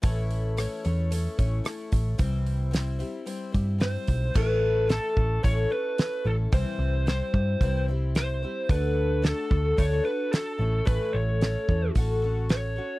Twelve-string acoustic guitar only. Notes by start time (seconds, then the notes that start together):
0.02 A2 E3 A3 C#4 E4 C#5
0.57 A3 C#4 E4 C#5
0.84 A3 C#4 E4 C#5
1.11 A3 C#4 E4 C#5
1.38 A3 C#4 E4 C#5
1.64 A3 C#4 E4 C#5
2.18 C3 E3 G3 C4 E4 C5
2.71 G3 C4 E4 C5
2.99 G3 C4 E4 C5
3.26 G3 C4 E4 C5
3.52 G3 C4 E4 C5
3.78 G3 C4 E4 C5
4.34 A2 E3 A3 C#4 E4 A4
4.88 A3 C#4 E4 A4
5.16 A3 C#4 E4 A4
5.43 A2 E3 A3 C#4 E4 A4
5.70 A3 C#4 E4 A4
6.24 A3 C#4 E4 A4
6.52 C3 E3 G3 C4 E4 C5
7.06 G3 C4 E4 C5
7.61 C3 E3 G3 C4 E4 C5
7.88 G3 C4 E4 C5
8.43 G3 C4 E4 C5
8.69 D3 A3 D4 F#4 A4
9.22 A3 D4 F#4 A4
9.77 D3 A3 D4 F#4 A4
10.05 D4 F#4 A4
10.58 A3 C#4 E4 A4
10.85 A2 E3 A3 C#4 E4 A4
11.42 A3 C#4 E4 A4
11.68 A3 C#4 E4 A4
11.96 A3 C#4 F#4 A4
12.22 C#4 F#4 A4
12.76 C#4 F#4 A4